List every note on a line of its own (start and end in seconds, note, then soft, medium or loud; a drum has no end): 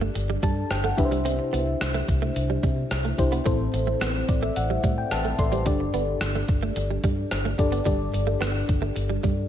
0.00 1.00 G2 medium
0.00 0.10 A3 medium
0.00 0.97 D4 medium
0.00 0.98 G4 medium
0.00 1.00 A4 medium
0.00 1.00 D5 medium
0.15 0.35 G1 medium
0.15 muted clean electric guitar stroke soft
0.15 closed hi-hat medium
0.30 0.38 G3 medium
0.43 0.63 G2 medium
0.43 0.52 G3 medium
0.43 0.69 A5 medium
0.43 kick medium
0.43 closed hi-hat medium
0.71 0.91 G1 medium
0.71 0.84 G5 medium
0.71 cross-stick medium
0.71 closed hi-hat medium
0.84 0.93 A3 medium
0.84 0.98 F#5 medium
0.97 1.38 C2 medium
0.97 1.77 C3 medium
0.97 1.86 D4 medium
0.97 1.86 E4 medium
0.97 1.86 G4 medium
0.97 1.05 B4 medium
0.97 1.24 E5 medium
0.97 muted clean electric guitar stroke soft
0.97 kick loud
0.97 closed hi-hat medium
1.05 1.90 C5 medium
1.11 1.20 G3 medium
1.11 closed hi-hat soft
1.25 1.34 C4 medium
1.25 closed hi-hat medium
1.39 muted clean electric guitar stroke soft
1.53 1.73 C2 medium
1.53 1.62 B3 medium
1.53 closed hi-hat medium
1.81 2.01 C2 medium
1.81 cross-stick loud
1.81 closed hi-hat medium
1.94 2.03 A3 medium
2.08 2.28 C2 medium
2.08 muted clean electric guitar stroke soft
2.08 kick medium
2.08 closed hi-hat medium
2.22 2.31 A3 medium
2.36 2.56 C2 medium
2.36 muted clean electric guitar stroke soft
2.36 closed hi-hat medium
2.50 2.59 G3 medium
2.63 2.83 C3 medium
2.63 2.72 G3 medium
2.63 kick medium
2.63 closed hi-hat medium
2.91 3.11 C2 medium
2.91 cross-stick medium
2.91 closed hi-hat medium
3.05 3.14 A3 medium
3.18 3.38 C2 medium
3.18 3.40 D4 medium
3.18 3.40 E4 medium
3.18 3.40 G4 medium
3.18 3.41 C5 medium
3.18 muted clean electric guitar stroke soft
3.18 kick medium
3.18 closed hi-hat medium
3.32 3.41 B3 medium
3.32 closed hi-hat soft
3.45 3.66 A1 loud
3.45 4.24 A2 medium
3.45 3.55 A3 medium
3.45 4.33 C4 medium
3.45 4.33 E4 medium
3.45 4.33 A4 medium
3.45 4.33 C5 medium
3.45 kick loud
3.45 closed hi-hat medium
3.74 3.93 A1 medium
3.74 muted clean electric guitar stroke soft
3.74 closed hi-hat medium
3.87 3.96 A3 medium
4.01 4.21 A1 medium
4.01 4.10 B3 medium
4.01 cross-stick loud
4.01 closed hi-hat medium
4.29 4.49 A1 medium
4.29 4.41 D5 medium
4.29 muted clean electric guitar stroke soft
4.29 kick medium
4.29 closed hi-hat medium
4.42 4.51 A3 medium
4.42 4.55 E5 medium
4.56 4.76 A1 loud
4.56 4.95 F#5 medium
4.56 muted clean electric guitar stroke soft
4.56 closed hi-hat medium
4.70 4.79 G3 medium
4.84 5.03 A2 medium
4.84 4.93 G3 medium
4.84 kick medium
4.84 closed hi-hat medium
4.98 5.10 G5 medium
5.11 5.31 A1 medium
5.11 5.38 B4 soft
5.11 5.37 E5 medium
5.11 5.37 A5 medium
5.11 cross-stick medium
5.11 closed hi-hat medium
5.25 5.34 A3 medium
5.39 5.68 A1 medium
5.39 5.52 A4 medium
5.39 5.52 D5 medium
5.39 5.64 C6 medium
5.39 muted clean electric guitar stroke soft
5.39 kick medium
5.39 closed hi-hat medium
5.52 5.61 G3 medium
5.52 5.65 G4 soft
5.52 5.79 C5 medium
5.52 closed hi-hat soft
5.66 5.86 G1 medium
5.66 6.45 G2 medium
5.66 5.75 G3 medium
5.66 6.53 D4 medium
5.66 6.53 G4 medium
5.66 6.54 A4 medium
5.66 6.54 D5 medium
5.66 kick loud
5.66 closed hi-hat medium
5.80 muted clean electric guitar stroke soft
5.94 6.14 G1 medium
5.94 6.03 B3 medium
5.94 closed hi-hat medium
6.21 6.41 G1 medium
6.21 cross-stick loud
6.21 closed hi-hat medium
6.35 6.44 A3 medium
6.48 6.69 G1 medium
6.48 muted clean electric guitar stroke soft
6.48 kick medium
6.48 closed hi-hat medium
6.63 6.71 A3 medium
6.76 6.96 G1 medium
6.76 muted clean electric guitar stroke soft
6.76 closed hi-hat medium
6.91 6.99 G3 medium
7.04 7.24 G2 medium
7.04 7.13 G3 medium
7.04 kick medium
7.04 closed hi-hat medium
7.31 7.51 G1 loud
7.31 cross-stick medium
7.31 closed hi-hat medium
7.45 7.54 A3 medium
7.58 7.79 G1 loud
7.58 7.80 D4 medium
7.58 7.81 G4 medium
7.58 7.81 A4 medium
7.58 7.81 D5 medium
7.58 muted clean electric guitar stroke soft
7.58 kick medium
7.58 closed hi-hat medium
7.72 7.81 B3 medium
7.72 closed hi-hat soft
7.85 8.06 G1 loud
7.85 8.65 G2 medium
7.85 7.95 G3 medium
7.85 8.73 D4 medium
7.85 8.73 G4 medium
7.85 8.74 A4 medium
7.85 8.74 D5 medium
7.85 kick loud
7.85 closed hi-hat medium
8.14 8.34 G1 medium
8.14 muted clean electric guitar stroke soft
8.14 closed hi-hat medium
8.27 8.36 A3 medium
8.41 8.61 G1 medium
8.41 8.50 B3 medium
8.41 cross-stick loud
8.41 closed hi-hat medium
8.68 8.89 G1 medium
8.68 muted clean electric guitar stroke soft
8.68 kick medium
8.68 closed hi-hat medium
8.82 8.91 A3 medium
8.96 9.16 G1 medium
8.96 muted clean electric guitar stroke soft
8.96 closed hi-hat medium
9.10 9.19 G3 medium
9.23 9.44 G2 medium
9.23 9.32 G3 medium
9.23 kick medium
9.23 closed hi-hat medium